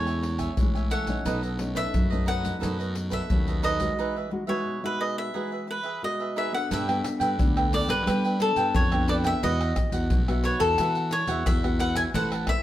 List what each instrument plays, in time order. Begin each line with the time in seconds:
Already playing: fingered electric bass E2, nylon-string guitar A2 G#3 C#4 E4, cavaquinho C#5
0.06 cavaquinho C#5 E5 G#5, pandeiro, maracas
0.23 muted cavaquinho stroke, pandeiro
0.39 cavaquinho C#5 E5 G#5, pandeiro, maracas, surdo
0.57 fingered electric bass A1, nylon-string guitar E3 G#3 C#4 E4, pandeiro, maracas, surdo
0.75 cavaquinho C#5 E5 G#5, pandeiro, maracas
0.91 cavaquinho A4 C#5 E5 F#5 G#5, pandeiro, maracas
1.07 nylon-string guitar A3 C#4 D#4, cavaquinho C#5 E5 G#5, pandeiro, maracas, surdo
1.25 fingered electric bass B1, nylon-string guitar B2, cavaquinho D#4 A4 B4 D#5, pandeiro, maracas, surdo
1.42 cavaquinho A4 B4 D#5, pandeiro, maracas
1.58 nylon-string guitar A3 C#4 D#4, muted cavaquinho stroke, pandeiro
1.75 cavaquinho A4 B4 E5, pandeiro, maracas, surdo
1.94 fingered electric bass F#2, nylon-string guitar F#3, pandeiro, maracas, surdo
2.10 nylon-string guitar A3 C#4 D#4, cavaquinho A4 B4 D#5, pandeiro, maracas
2.26 cavaquinho D#4 A4 B4 D#5 F#5, pandeiro
2.45 nylon-string guitar A3 C#4 D#4, pandeiro, maracas, surdo
2.60 fingered electric bass F#2, nylon-string guitar B2 A3 C#4 D#4, cavaquinho D#4 A4 B4 D#5, pandeiro, maracas, surdo
2.79 cavaquinho A4 B4 D#5, pandeiro, maracas
2.95 muted cavaquinho stroke, pandeiro
3.10 cavaquinho A4 B4 E5, pandeiro, maracas, surdo
3.30 fingered electric bass D#2, nylon-string guitar F#3 A3 C#4, pandeiro, maracas, surdo
3.47 cavaquinho A4 B4 D#5, pandeiro, maracas
3.63 cavaquinho D#4 A4 B4 D#5, pandeiro, maracas
3.80 nylon-string guitar G#3 D#4 F#4, cavaquinho A4 B4 D#5, pandeiro, maracas, surdo
3.99 nylon-string guitar E3, cavaquinho D#4 G#4 B4 E5
4.16 cavaquinho G#4 B4 E5
4.31 nylon-string guitar G#3 D#4 F#4, muted cavaquinho stroke
4.47 nylon-string guitar G#3 D#4 F#4, cavaquinho G#4 B4 C#5 E5
4.65 nylon-string guitar B2
4.83 nylon-string guitar G#3 D#4 F#4, cavaquinho G#4 B4 E5
4.99 cavaquinho G#4 B4 D#5 E5
5.18 cavaquinho E5
5.34 nylon-string guitar E3 G#3 F#4, cavaquinho D#4 G#4 B4 E5
5.52 cavaquinho G#4 B4 E5
5.67 cavaquinho B4, muted cavaquinho stroke
5.83 cavaquinho G#4 B4 E5
6.02 nylon-string guitar B2 G#3 F#4, cavaquinho D#5
6.20 cavaquinho G#4 B4 E5
6.36 cavaquinho D#4 G#4 B4 E5
6.52 nylon-string guitar B3 D4 A4, cavaquinho G#4 B4 E5 F#5
6.71 fingered electric bass G2, nylon-string guitar G3, cavaquinho D4 A4 B4 E5 G5, pandeiro, maracas, surdo
6.88 nylon-string guitar B3 D4 A4, cavaquinho A4 B4 G5, pandeiro, tamborim, maracas
7.04 muted cavaquinho stroke, pandeiro, tamborim, maracas
7.20 fingered electric bass G2, cavaquinho A4 B4 G5, pandeiro, maracas
7.38 fingered electric bass D2, nylon-string guitar D3 B3 D4 A4, pandeiro, maracas, surdo
7.57 cavaquinho A4 B4 G5, pandeiro, tamborim, maracas
7.72 nylon-string guitar B3 D4 A4, cavaquinho D4 A4 B4 D5 G5, pandeiro, maracas
7.87 fingered electric bass G2, cavaquinho B4, pandeiro, tamborim, maracas
8.06 fingered electric bass G3, nylon-string guitar G3 B3 D4 A4, cavaquinho D4 A4 B4 G5, pandeiro, tamborim, maracas, surdo
8.24 cavaquinho A4 B4 G5, pandeiro, maracas
8.40 nylon-string guitar B3 D4 A4, cavaquinho A4, muted cavaquinho stroke, pandeiro
8.56 fingered electric bass G2, cavaquinho A4 B4 G5, pandeiro, maracas
8.74 fingered electric bass F2, nylon-string guitar D3, cavaquinho C#5, pandeiro, tamborim, maracas, surdo
8.92 nylon-string guitar B3 D4 A4, cavaquinho A4 B4 G5, pandeiro, tamborim, maracas
9.08 cavaquinho D4 A4 B4 D5 G5, pandeiro
9.24 cavaquinho A4 B4 E5 G5, pandeiro, tamborim, maracas
9.42 fingered electric bass E2, nylon-string guitar E3 B3 F#4 B4, cavaquinho B4 D#5 E5 F#5, pandeiro, maracas, surdo
9.61 cavaquinho E5 F#5, pandeiro, tamborim, maracas
9.76 muted cavaquinho stroke, pandeiro, tamborim, maracas, surdo
9.91 fingered electric bass E2, nylon-string guitar B3 F#4 B4, cavaquinho F#5, pandeiro, maracas
10.10 fingered electric bass B1, nylon-string guitar B2, pandeiro, maracas, surdo
10.28 nylon-string guitar B3 F#4 B4, cavaquinho E5 F#5, pandeiro, tamborim, maracas
10.44 cavaquinho B4 C#5 E5 F#5, pandeiro
10.60 fingered electric bass E2, cavaquinho A4, pandeiro, tamborim, maracas
10.78 nylon-string guitar E3 B3 F#4 B4, fingered electric bass E3, cavaquinho B4 E5 F#5, pandeiro, tamborim, maracas, surdo
10.95 cavaquinho E5 F#5, pandeiro, maracas
11.11 cavaquinho C#5, muted cavaquinho stroke, pandeiro
11.27 fingered electric bass E2, nylon-string guitar B3 F#4 B4, cavaquinho E5 F#5, pandeiro, maracas
11.46 fingered electric bass E2, nylon-string guitar B2, cavaquinho E5, pandeiro, tamborim, maracas, surdo
11.63 nylon-string guitar B3 F#4 B4, cavaquinho E5 F#5, pandeiro, tamborim, maracas
11.79 cavaquinho B4 E5 F#5, pandeiro, maracas
11.96 cavaquinho E5 F#5 G#5, pandeiro, tamborim, maracas
12.14 fingered electric bass A1, nylon-string guitar A3 C4 E4 B4, cavaquinho A4 B4 C5 F#5 A5, pandeiro, maracas, surdo
12.32 cavaquinho B4 C5 A5, pandeiro, tamborim, maracas
12.47 nylon-string guitar C4 E4 B4, cavaquinho E5, muted cavaquinho stroke, pandeiro, tamborim, surdo